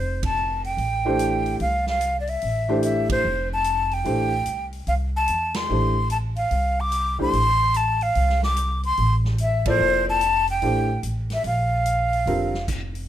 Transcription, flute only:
0, 0, Header, 1, 2, 480
1, 0, Start_track
1, 0, Key_signature, -1, "major"
1, 0, Tempo, 410397
1, 1868, Time_signature, 4, 2, 24, 8
1, 15303, End_track
2, 0, Start_track
2, 0, Title_t, "Flute"
2, 0, Program_c, 0, 73
2, 0, Note_on_c, 0, 72, 68
2, 265, Note_off_c, 0, 72, 0
2, 290, Note_on_c, 0, 81, 82
2, 725, Note_off_c, 0, 81, 0
2, 760, Note_on_c, 0, 79, 78
2, 1828, Note_off_c, 0, 79, 0
2, 1884, Note_on_c, 0, 77, 71
2, 2169, Note_off_c, 0, 77, 0
2, 2205, Note_on_c, 0, 77, 83
2, 2540, Note_off_c, 0, 77, 0
2, 2576, Note_on_c, 0, 74, 61
2, 2680, Note_on_c, 0, 76, 81
2, 2698, Note_off_c, 0, 74, 0
2, 3314, Note_off_c, 0, 76, 0
2, 3320, Note_on_c, 0, 76, 75
2, 3606, Note_off_c, 0, 76, 0
2, 3646, Note_on_c, 0, 72, 85
2, 4080, Note_off_c, 0, 72, 0
2, 4129, Note_on_c, 0, 81, 87
2, 4602, Note_on_c, 0, 79, 79
2, 4619, Note_off_c, 0, 81, 0
2, 5447, Note_off_c, 0, 79, 0
2, 5708, Note_on_c, 0, 77, 81
2, 5779, Note_off_c, 0, 77, 0
2, 6039, Note_on_c, 0, 81, 89
2, 6501, Note_on_c, 0, 84, 84
2, 6519, Note_off_c, 0, 81, 0
2, 7143, Note_off_c, 0, 84, 0
2, 7150, Note_on_c, 0, 81, 77
2, 7220, Note_off_c, 0, 81, 0
2, 7445, Note_on_c, 0, 77, 83
2, 7957, Note_on_c, 0, 86, 96
2, 7975, Note_off_c, 0, 77, 0
2, 8427, Note_off_c, 0, 86, 0
2, 8436, Note_on_c, 0, 84, 96
2, 9083, Note_on_c, 0, 81, 84
2, 9101, Note_off_c, 0, 84, 0
2, 9386, Note_on_c, 0, 77, 88
2, 9403, Note_off_c, 0, 81, 0
2, 9861, Note_off_c, 0, 77, 0
2, 9870, Note_on_c, 0, 86, 89
2, 10311, Note_off_c, 0, 86, 0
2, 10352, Note_on_c, 0, 84, 94
2, 10697, Note_off_c, 0, 84, 0
2, 11012, Note_on_c, 0, 76, 88
2, 11292, Note_off_c, 0, 76, 0
2, 11329, Note_on_c, 0, 72, 85
2, 11762, Note_off_c, 0, 72, 0
2, 11805, Note_on_c, 0, 81, 83
2, 12240, Note_off_c, 0, 81, 0
2, 12286, Note_on_c, 0, 79, 81
2, 12874, Note_off_c, 0, 79, 0
2, 13257, Note_on_c, 0, 76, 75
2, 13394, Note_off_c, 0, 76, 0
2, 13410, Note_on_c, 0, 77, 78
2, 14793, Note_off_c, 0, 77, 0
2, 15303, End_track
0, 0, End_of_file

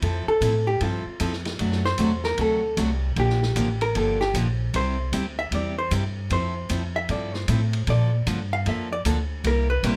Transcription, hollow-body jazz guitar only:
0, 0, Header, 1, 2, 480
1, 0, Start_track
1, 0, Key_signature, -1, "major"
1, 0, Tempo, 392670
1, 24, Time_signature, 4, 2, 24, 8
1, 12178, End_track
2, 0, Start_track
2, 0, Title_t, "Hollow-body jazz guitar"
2, 0, Program_c, 0, 26
2, 346, Note_on_c, 0, 69, 92
2, 788, Note_off_c, 0, 69, 0
2, 822, Note_on_c, 0, 67, 88
2, 984, Note_off_c, 0, 67, 0
2, 1013, Note_on_c, 0, 65, 67
2, 1448, Note_off_c, 0, 65, 0
2, 2268, Note_on_c, 0, 72, 101
2, 2710, Note_off_c, 0, 72, 0
2, 2748, Note_on_c, 0, 70, 86
2, 2909, Note_off_c, 0, 70, 0
2, 2950, Note_on_c, 0, 69, 70
2, 3377, Note_off_c, 0, 69, 0
2, 3907, Note_on_c, 0, 67, 75
2, 4629, Note_off_c, 0, 67, 0
2, 4668, Note_on_c, 0, 70, 104
2, 4829, Note_off_c, 0, 70, 0
2, 4856, Note_on_c, 0, 69, 66
2, 5143, Note_off_c, 0, 69, 0
2, 5143, Note_on_c, 0, 67, 96
2, 5307, Note_off_c, 0, 67, 0
2, 5819, Note_on_c, 0, 72, 81
2, 6545, Note_off_c, 0, 72, 0
2, 6586, Note_on_c, 0, 76, 109
2, 6748, Note_off_c, 0, 76, 0
2, 6782, Note_on_c, 0, 74, 76
2, 7066, Note_off_c, 0, 74, 0
2, 7072, Note_on_c, 0, 72, 98
2, 7231, Note_off_c, 0, 72, 0
2, 7734, Note_on_c, 0, 72, 87
2, 8461, Note_off_c, 0, 72, 0
2, 8508, Note_on_c, 0, 76, 112
2, 8669, Note_off_c, 0, 76, 0
2, 8692, Note_on_c, 0, 74, 74
2, 8980, Note_off_c, 0, 74, 0
2, 8980, Note_on_c, 0, 72, 105
2, 9144, Note_off_c, 0, 72, 0
2, 9659, Note_on_c, 0, 74, 87
2, 10382, Note_off_c, 0, 74, 0
2, 10427, Note_on_c, 0, 77, 116
2, 10587, Note_off_c, 0, 77, 0
2, 10620, Note_on_c, 0, 76, 75
2, 10903, Note_off_c, 0, 76, 0
2, 10911, Note_on_c, 0, 74, 114
2, 11008, Note_off_c, 0, 74, 0
2, 11576, Note_on_c, 0, 70, 88
2, 11851, Note_off_c, 0, 70, 0
2, 11855, Note_on_c, 0, 71, 98
2, 12048, Note_off_c, 0, 71, 0
2, 12048, Note_on_c, 0, 72, 77
2, 12178, Note_off_c, 0, 72, 0
2, 12178, End_track
0, 0, End_of_file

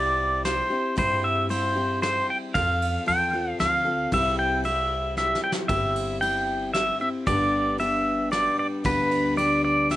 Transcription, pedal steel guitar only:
0, 0, Header, 1, 2, 480
1, 0, Start_track
1, 0, Key_signature, 0, "major"
1, 0, Tempo, 524934
1, 892, Time_signature, 3, 2, 24, 8
1, 9111, End_track
2, 0, Start_track
2, 0, Title_t, "Pedal steel guitar"
2, 0, Program_c, 0, 26
2, 0, Note_on_c, 0, 74, 89
2, 408, Note_off_c, 0, 74, 0
2, 412, Note_on_c, 0, 72, 73
2, 892, Note_off_c, 0, 72, 0
2, 903, Note_on_c, 0, 72, 83
2, 1136, Note_on_c, 0, 76, 89
2, 1144, Note_off_c, 0, 72, 0
2, 1357, Note_off_c, 0, 76, 0
2, 1374, Note_on_c, 0, 72, 76
2, 1839, Note_off_c, 0, 72, 0
2, 1850, Note_on_c, 0, 72, 76
2, 2098, Note_off_c, 0, 72, 0
2, 2105, Note_on_c, 0, 79, 89
2, 2168, Note_off_c, 0, 79, 0
2, 2326, Note_on_c, 0, 77, 93
2, 2811, Note_off_c, 0, 77, 0
2, 2815, Note_on_c, 0, 79, 92
2, 3289, Note_off_c, 0, 79, 0
2, 3292, Note_on_c, 0, 77, 90
2, 3779, Note_off_c, 0, 77, 0
2, 3783, Note_on_c, 0, 76, 89
2, 4010, Note_off_c, 0, 76, 0
2, 4014, Note_on_c, 0, 79, 97
2, 4250, Note_off_c, 0, 79, 0
2, 4253, Note_on_c, 0, 76, 89
2, 4723, Note_off_c, 0, 76, 0
2, 4734, Note_on_c, 0, 76, 76
2, 4968, Note_off_c, 0, 76, 0
2, 4971, Note_on_c, 0, 79, 77
2, 5036, Note_off_c, 0, 79, 0
2, 5197, Note_on_c, 0, 76, 80
2, 5675, Note_off_c, 0, 76, 0
2, 5678, Note_on_c, 0, 79, 90
2, 6155, Note_off_c, 0, 79, 0
2, 6159, Note_on_c, 0, 76, 90
2, 6400, Note_off_c, 0, 76, 0
2, 6411, Note_on_c, 0, 76, 73
2, 6476, Note_off_c, 0, 76, 0
2, 6648, Note_on_c, 0, 74, 90
2, 7096, Note_off_c, 0, 74, 0
2, 7130, Note_on_c, 0, 76, 80
2, 7602, Note_off_c, 0, 76, 0
2, 7605, Note_on_c, 0, 74, 74
2, 7847, Note_off_c, 0, 74, 0
2, 7858, Note_on_c, 0, 74, 78
2, 7922, Note_off_c, 0, 74, 0
2, 8098, Note_on_c, 0, 71, 79
2, 8568, Note_off_c, 0, 71, 0
2, 8571, Note_on_c, 0, 74, 80
2, 8809, Note_off_c, 0, 74, 0
2, 8820, Note_on_c, 0, 74, 92
2, 9064, Note_off_c, 0, 74, 0
2, 9064, Note_on_c, 0, 76, 79
2, 9111, Note_off_c, 0, 76, 0
2, 9111, End_track
0, 0, End_of_file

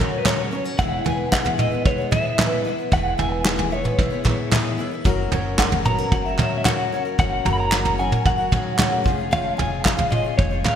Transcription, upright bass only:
0, 0, Header, 1, 2, 480
1, 0, Start_track
1, 0, Tempo, 532860
1, 713, Time_signature, 4, 2, 24, 8
1, 9688, End_track
2, 0, Start_track
2, 0, Title_t, "Upright bass"
2, 0, Program_c, 0, 32
2, 710, Note_on_c, 0, 28, 81
2, 911, Note_off_c, 0, 28, 0
2, 957, Note_on_c, 0, 28, 93
2, 1554, Note_off_c, 0, 28, 0
2, 1672, Note_on_c, 0, 28, 86
2, 1872, Note_off_c, 0, 28, 0
2, 2632, Note_on_c, 0, 28, 87
2, 2832, Note_off_c, 0, 28, 0
2, 2869, Note_on_c, 0, 28, 84
2, 3470, Note_off_c, 0, 28, 0
2, 3590, Note_on_c, 0, 28, 85
2, 3792, Note_off_c, 0, 28, 0
2, 4549, Note_on_c, 0, 30, 78
2, 4751, Note_off_c, 0, 30, 0
2, 4791, Note_on_c, 0, 30, 83
2, 5392, Note_off_c, 0, 30, 0
2, 5512, Note_on_c, 0, 30, 82
2, 5713, Note_off_c, 0, 30, 0
2, 6476, Note_on_c, 0, 30, 86
2, 6675, Note_off_c, 0, 30, 0
2, 6713, Note_on_c, 0, 30, 92
2, 7313, Note_off_c, 0, 30, 0
2, 7436, Note_on_c, 0, 30, 79
2, 7635, Note_off_c, 0, 30, 0
2, 8155, Note_on_c, 0, 29, 87
2, 8554, Note_off_c, 0, 29, 0
2, 8636, Note_on_c, 0, 29, 92
2, 9234, Note_off_c, 0, 29, 0
2, 9355, Note_on_c, 0, 29, 92
2, 9555, Note_off_c, 0, 29, 0
2, 9688, End_track
0, 0, End_of_file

